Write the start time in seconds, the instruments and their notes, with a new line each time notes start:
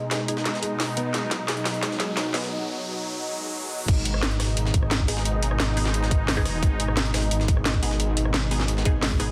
Already playing: analog synth pad B2 G#3 D#4, ambient pad G#4, riser
0.11 felt piano G#4, snare, closed hi-hat
0.28 synth stab B3 D#4 G#4, felt piano D#4, closed hi-hat
0.37 snare
0.45 felt piano G#3, snare, closed hi-hat
0.54 snare
0.63 felt piano G#3, closed hi-hat
0.80 felt piano D#4, snare, closed hi-hat, open hi-hat
0.97 felt piano B3, closed hi-hat
1.14 analog synth pad F#3, felt piano G#3, snare, closed hi-hat
1.31 snare, closed hi-hat
1.48 felt piano G#4, snare, closed hi-hat
1.57 closed hi-hat
1.65 felt piano D#4, snare, closed hi-hat, open hi-hat
1.74 closed hi-hat
1.83 felt piano G#3, snare, closed hi-hat
1.91 snare
2.00 felt piano G#3, snare, closed hi-hat
2.17 felt piano D#4, snare, closed hi-hat
2.34 synth stab B3 D#4 G#4, felt piano B3, snare, closed hi-hat, open hi-hat
2.43 snare
3.20 swell
3.88 detuned saw bass G#1, analog synth pad B2 G#3 D#4, kick, closed hi-hat, crash
4.05 closed hi-hat
4.14 cross-stick
4.23 snare, closed hi-hat
4.31 closed hi-hat
4.40 detuned saw bass G#1, cross-stick, snare, closed hi-hat, open hi-hat
4.57 detuned saw bass G#1, closed hi-hat
4.65 snare
4.74 kick, closed hi-hat
4.83 cross-stick
4.91 snare, closed hi-hat
5.00 kick
5.08 synth stab B3 D#4 G#4, closed hi-hat, open hi-hat
5.17 snare
5.25 closed hi-hat
5.43 detuned saw bass G#1, closed hi-hat
5.51 cross-stick
5.60 detuned saw bass G#1, snare, closed hi-hat
5.77 synth stab B3 D#4 G#4, closed hi-hat, open hi-hat
5.85 snare
5.94 closed hi-hat
6.03 snare
6.11 detuned saw bass G#1, kick, closed hi-hat
6.28 snare, closed hi-hat, open hi-hat
6.37 synth stab B3 D#4 G#4, kick
6.45 cross-stick, closed hi-hat, open hi-hat
6.63 detuned saw bass G#1, kick, closed hi-hat
6.80 closed hi-hat
6.88 cross-stick
6.97 snare, closed hi-hat
7.05 closed hi-hat
7.14 detuned saw bass G#1, cross-stick, snare, closed hi-hat, open hi-hat
7.23 closed hi-hat
7.31 detuned saw bass G#1, closed hi-hat
7.40 snare
7.48 kick, closed hi-hat
7.57 cross-stick
7.65 snare, closed hi-hat
7.74 kick
7.83 synth stab B3 D#4 G#4, closed hi-hat, open hi-hat
7.91 snare
8.00 closed hi-hat
8.17 detuned saw bass G#1, closed hi-hat
8.25 cross-stick
8.34 detuned saw bass G#1, snare, closed hi-hat
8.51 synth stab B3 D#4 G#4, closed hi-hat, open hi-hat
8.60 snare
8.68 detuned saw bass G#1, closed hi-hat
8.77 snare
8.85 detuned saw bass G#1, synth stab B3 D#4 G#4, kick, closed hi-hat
9.03 snare, closed hi-hat, open hi-hat
9.11 kick
9.20 detuned saw bass G#1, synth stab B3 D#4 G#4, cross-stick, closed hi-hat, open hi-hat